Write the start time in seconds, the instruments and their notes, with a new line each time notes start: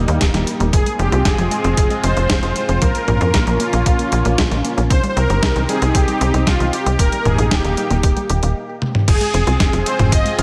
Already playing: analog synth pad G3 A#3 D#4
0.08 analog synth bass D#2, synth arpeggio sound D#4, closed hi-hat
0.21 analog synth bass D#1, synth arpeggio sound G4, kick, snare, closed hi-hat
0.34 analog synth bass D#1, synth arpeggio sound D#3, snare, closed hi-hat
0.46 synth arpeggio sound G3, closed hi-hat
0.60 analog synth bass D#1, synth arpeggio sound A#3, closed hi-hat
0.73 analog synth bass F1, synth arpeggio sound F3, analog synth pad G#3 C4 F4, supersaw synth G#4, kick, closed hi-hat
0.86 synth arpeggio sound G#3, closed hi-hat
0.99 analog synth bass F1, synth arpeggio sound C4, supersaw synth G4, closed hi-hat
1.12 analog synth bass C2, synth arpeggio sound F4, closed hi-hat
1.25 analog synth bass F1, supersaw synth G#4, synth arpeggio sound G#4, kick, snare, closed hi-hat
1.38 analog synth bass F1, synth arpeggio sound F3, closed hi-hat
1.51 synth arpeggio sound G#3, supersaw synth G#4, closed hi-hat
1.64 analog synth bass F1, synth arpeggio sound C4, closed hi-hat
1.77 analog synth bass F1, synth arpeggio sound F3, kick, closed hi-hat
1.90 synth arpeggio sound G#3, closed hi-hat
2.03 analog synth bass F1, synth arpeggio sound C4, supersaw synth C5, closed hi-hat
2.17 analog synth bass F1, synth arpeggio sound F4, closed hi-hat
2.30 analog synth bass F1, synth arpeggio sound G#4, kick, snare, closed hi-hat
2.43 analog synth bass F1, synth arpeggio sound F3, closed hi-hat
2.56 synth arpeggio sound G#3, supersaw synth C5, closed hi-hat
2.69 analog synth bass F1, synth arpeggio sound C4, closed hi-hat
2.81 analog synth bass A#1, synth arpeggio sound F3, analog synth pad A#3 C#4, supersaw synth A#4, kick, closed hi-hat
2.95 synth arpeggio sound A#3, closed hi-hat
3.08 analog synth bass A#1, synth arpeggio sound C#4, closed hi-hat, mid tom
3.21 analog synth bass F2, synth arpeggio sound F4, closed hi-hat
3.34 analog synth bass A#1, synth arpeggio sound A#4, kick, snare, closed hi-hat
3.47 analog synth bass A#1, synth arpeggio sound F3, closed hi-hat
3.60 synth arpeggio sound A#3, supersaw synth F4, closed hi-hat
3.73 analog synth bass A#1, synth arpeggio sound C#4, closed hi-hat
3.86 analog synth bass A#1, synth arpeggio sound F3, kick, closed hi-hat
3.99 synth arpeggio sound A#3, closed hi-hat
4.12 analog synth bass A#1, synth arpeggio sound C#4, closed hi-hat
4.25 analog synth bass A#1, synth arpeggio sound F4, closed hi-hat
4.38 analog synth bass A#1, synth arpeggio sound A#4, kick, snare, closed hi-hat
4.51 analog synth bass A#1, synth arpeggio sound F3, snare, closed hi-hat
4.64 synth arpeggio sound A#3, closed hi-hat
4.77 analog synth bass A#1, synth arpeggio sound C#4, closed hi-hat
4.90 analog synth bass C2, synth arpeggio sound D#3, analog synth pad C4 D#4 G4, supersaw synth C5, kick, closed hi-hat
5.03 synth arpeggio sound G3, closed hi-hat
5.09 supersaw synth C5
5.16 analog synth bass C2, synth arpeggio sound C4, supersaw synth A#4, closed hi-hat
5.30 analog synth bass G1, synth arpeggio sound D#4, closed hi-hat
5.43 analog synth bass C2, synth arpeggio sound G4, kick, snare, closed hi-hat
5.56 analog synth bass C2, synth arpeggio sound D#3, closed hi-hat
5.68 synth arpeggio sound G3, supersaw synth G#4, closed hi-hat
5.82 analog synth bass C2, synth arpeggio sound C4, closed hi-hat
5.94 analog synth bass C2, synth arpeggio sound D#3, supersaw synth G4, kick, closed hi-hat
6.08 synth arpeggio sound G3, closed hi-hat
6.21 analog synth bass C2, synth arpeggio sound C4, closed hi-hat
6.34 analog synth bass C2, synth arpeggio sound D#4, closed hi-hat
6.46 analog synth bass C2, supersaw synth F4, synth arpeggio sound G4, kick, snare, closed hi-hat
6.60 analog synth bass C2, synth arpeggio sound D#3, closed hi-hat
6.72 synth arpeggio sound G3, supersaw synth G4, closed hi-hat
6.86 analog synth bass C2, synth arpeggio sound C4, closed hi-hat
6.98 analog synth bass D#1, synth arpeggio sound D#3, analog synth pad A#3 D#4, supersaw synth A#4, kick, closed hi-hat
7.12 synth arpeggio sound G3, closed hi-hat
7.25 analog synth bass D#1, synth arpeggio sound A#3, supersaw synth G#4, closed hi-hat, mid tom
7.38 analog synth bass A#1, synth arpeggio sound D#4, closed hi-hat
7.51 analog synth bass D#1, supersaw synth G4, synth arpeggio sound G4, kick, snare, closed hi-hat
7.64 analog synth bass D#1, synth arpeggio sound D#3, closed hi-hat
7.77 synth arpeggio sound G3, closed hi-hat
7.90 analog synth bass D#1, synth arpeggio sound A#3, closed hi-hat
8.03 analog synth bass D#1, synth arpeggio sound D#3, kick, closed hi-hat
8.17 synth arpeggio sound G3, closed hi-hat
8.30 analog synth bass D#1, synth arpeggio sound G4, closed hi-hat
8.43 analog synth bass D#1, synth arpeggio sound A#3, closed hi-hat
8.82 high tom
8.95 mid tom
9.08 analog synth bass F1, synth arpeggio sound F3, analog synth pad C4 F4 G#4, supersaw synth G#4, kick, closed hi-hat, crash
9.21 synth arpeggio sound G#3, closed hi-hat
9.34 analog synth bass F1, synth arpeggio sound C4, closed hi-hat
9.47 analog synth bass C2, synth arpeggio sound F4, closed hi-hat
9.60 analog synth bass F1, synth arpeggio sound G#4, kick, snare, closed hi-hat
9.73 analog synth bass F1, synth arpeggio sound F3, closed hi-hat
9.86 synth arpeggio sound G#3, supersaw synth C5, closed hi-hat
9.99 analog synth bass F1, synth arpeggio sound C4, closed hi-hat, mid tom
10.12 analog synth bass F1, synth arpeggio sound F3, supersaw synth D#5, kick, closed hi-hat
10.25 synth arpeggio sound G#3, closed hi-hat
10.38 analog synth bass F1, synth arpeggio sound C4, supersaw synth F5, closed hi-hat